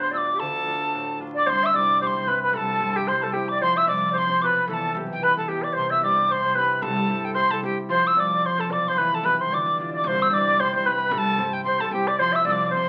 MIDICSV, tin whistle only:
0, 0, Header, 1, 2, 480
1, 0, Start_track
1, 0, Tempo, 268097
1, 713, Time_signature, 4, 2, 24, 8
1, 23075, End_track
2, 0, Start_track
2, 0, Title_t, "Tin whistle"
2, 0, Program_c, 0, 75
2, 32, Note_on_c, 0, 84, 72
2, 221, Note_off_c, 0, 84, 0
2, 245, Note_on_c, 0, 88, 88
2, 313, Note_on_c, 0, 86, 95
2, 331, Note_off_c, 0, 88, 0
2, 711, Note_on_c, 0, 81, 94
2, 738, Note_off_c, 0, 86, 0
2, 2152, Note_off_c, 0, 81, 0
2, 2479, Note_on_c, 0, 86, 94
2, 2680, Note_on_c, 0, 84, 116
2, 2706, Note_off_c, 0, 86, 0
2, 2970, Note_on_c, 0, 88, 93
2, 2997, Note_off_c, 0, 84, 0
2, 3149, Note_on_c, 0, 86, 102
2, 3176, Note_off_c, 0, 88, 0
2, 3605, Note_off_c, 0, 86, 0
2, 3615, Note_on_c, 0, 86, 88
2, 3704, Note_on_c, 0, 84, 96
2, 3722, Note_off_c, 0, 86, 0
2, 4084, Note_on_c, 0, 83, 83
2, 4111, Note_off_c, 0, 84, 0
2, 4344, Note_off_c, 0, 83, 0
2, 4355, Note_on_c, 0, 83, 84
2, 4532, Note_off_c, 0, 83, 0
2, 4543, Note_on_c, 0, 83, 108
2, 4602, Note_on_c, 0, 81, 118
2, 4620, Note_off_c, 0, 83, 0
2, 5317, Note_on_c, 0, 79, 92
2, 5344, Note_off_c, 0, 81, 0
2, 5520, Note_on_c, 0, 84, 104
2, 5547, Note_off_c, 0, 79, 0
2, 5758, Note_on_c, 0, 81, 75
2, 5785, Note_off_c, 0, 84, 0
2, 5952, Note_on_c, 0, 79, 79
2, 5978, Note_off_c, 0, 81, 0
2, 6240, Note_on_c, 0, 86, 101
2, 6267, Note_off_c, 0, 79, 0
2, 6457, Note_off_c, 0, 86, 0
2, 6480, Note_on_c, 0, 84, 121
2, 6754, Note_on_c, 0, 88, 105
2, 6781, Note_off_c, 0, 84, 0
2, 6938, Note_off_c, 0, 88, 0
2, 6949, Note_on_c, 0, 86, 103
2, 7419, Note_off_c, 0, 86, 0
2, 7419, Note_on_c, 0, 86, 97
2, 7482, Note_on_c, 0, 84, 106
2, 7500, Note_off_c, 0, 86, 0
2, 7911, Note_on_c, 0, 86, 87
2, 7938, Note_off_c, 0, 84, 0
2, 7987, Note_on_c, 0, 83, 94
2, 8005, Note_off_c, 0, 86, 0
2, 8392, Note_off_c, 0, 83, 0
2, 8392, Note_on_c, 0, 83, 94
2, 8479, Note_on_c, 0, 81, 102
2, 8497, Note_off_c, 0, 83, 0
2, 8823, Note_off_c, 0, 81, 0
2, 9176, Note_on_c, 0, 79, 84
2, 9371, Note_on_c, 0, 83, 96
2, 9398, Note_off_c, 0, 79, 0
2, 9626, Note_off_c, 0, 83, 0
2, 9637, Note_on_c, 0, 81, 69
2, 9828, Note_on_c, 0, 79, 72
2, 9855, Note_off_c, 0, 81, 0
2, 10095, Note_on_c, 0, 86, 96
2, 10122, Note_off_c, 0, 79, 0
2, 10303, Note_off_c, 0, 86, 0
2, 10326, Note_on_c, 0, 84, 100
2, 10571, Note_off_c, 0, 84, 0
2, 10582, Note_on_c, 0, 88, 88
2, 10772, Note_off_c, 0, 88, 0
2, 10806, Note_on_c, 0, 86, 85
2, 11314, Note_on_c, 0, 84, 98
2, 11340, Note_off_c, 0, 86, 0
2, 11750, Note_off_c, 0, 84, 0
2, 11761, Note_on_c, 0, 83, 84
2, 12212, Note_on_c, 0, 81, 101
2, 12238, Note_off_c, 0, 83, 0
2, 12977, Note_on_c, 0, 79, 59
2, 13004, Note_off_c, 0, 81, 0
2, 13131, Note_off_c, 0, 79, 0
2, 13142, Note_on_c, 0, 84, 106
2, 13444, Note_on_c, 0, 81, 77
2, 13471, Note_off_c, 0, 84, 0
2, 13657, Note_off_c, 0, 81, 0
2, 13685, Note_on_c, 0, 79, 78
2, 13929, Note_off_c, 0, 79, 0
2, 14139, Note_on_c, 0, 84, 106
2, 14450, Note_on_c, 0, 88, 100
2, 14477, Note_off_c, 0, 84, 0
2, 14677, Note_on_c, 0, 86, 95
2, 14704, Note_off_c, 0, 88, 0
2, 15147, Note_on_c, 0, 84, 98
2, 15174, Note_off_c, 0, 86, 0
2, 15408, Note_on_c, 0, 81, 83
2, 15435, Note_off_c, 0, 84, 0
2, 15625, Note_on_c, 0, 86, 78
2, 15652, Note_off_c, 0, 81, 0
2, 15902, Note_on_c, 0, 84, 82
2, 15929, Note_off_c, 0, 86, 0
2, 16077, Note_on_c, 0, 83, 100
2, 16104, Note_off_c, 0, 84, 0
2, 16374, Note_on_c, 0, 81, 77
2, 16400, Note_off_c, 0, 83, 0
2, 16562, Note_on_c, 0, 83, 89
2, 16589, Note_off_c, 0, 81, 0
2, 16845, Note_on_c, 0, 84, 75
2, 16872, Note_off_c, 0, 83, 0
2, 17084, Note_on_c, 0, 86, 91
2, 17110, Note_off_c, 0, 84, 0
2, 17509, Note_off_c, 0, 86, 0
2, 17857, Note_on_c, 0, 86, 81
2, 18030, Note_on_c, 0, 84, 113
2, 18057, Note_off_c, 0, 86, 0
2, 18302, Note_on_c, 0, 88, 99
2, 18329, Note_off_c, 0, 84, 0
2, 18511, Note_on_c, 0, 86, 100
2, 18538, Note_off_c, 0, 88, 0
2, 18983, Note_on_c, 0, 84, 113
2, 19010, Note_off_c, 0, 86, 0
2, 19240, Note_off_c, 0, 84, 0
2, 19259, Note_on_c, 0, 84, 77
2, 19464, Note_on_c, 0, 83, 101
2, 19491, Note_off_c, 0, 84, 0
2, 19925, Note_off_c, 0, 83, 0
2, 19925, Note_on_c, 0, 83, 117
2, 20014, Note_on_c, 0, 81, 127
2, 20032, Note_off_c, 0, 83, 0
2, 20648, Note_on_c, 0, 79, 77
2, 20674, Note_off_c, 0, 81, 0
2, 20835, Note_off_c, 0, 79, 0
2, 20846, Note_on_c, 0, 84, 92
2, 21136, Note_on_c, 0, 81, 87
2, 21163, Note_off_c, 0, 84, 0
2, 21350, Note_on_c, 0, 79, 87
2, 21377, Note_off_c, 0, 81, 0
2, 21618, Note_on_c, 0, 86, 92
2, 21645, Note_off_c, 0, 79, 0
2, 21825, Note_off_c, 0, 86, 0
2, 21836, Note_on_c, 0, 84, 127
2, 22120, Note_on_c, 0, 88, 89
2, 22147, Note_off_c, 0, 84, 0
2, 22321, Note_off_c, 0, 88, 0
2, 22351, Note_on_c, 0, 88, 87
2, 22412, Note_on_c, 0, 86, 95
2, 22430, Note_off_c, 0, 88, 0
2, 22782, Note_off_c, 0, 86, 0
2, 22829, Note_on_c, 0, 84, 110
2, 23075, Note_off_c, 0, 84, 0
2, 23075, End_track
0, 0, End_of_file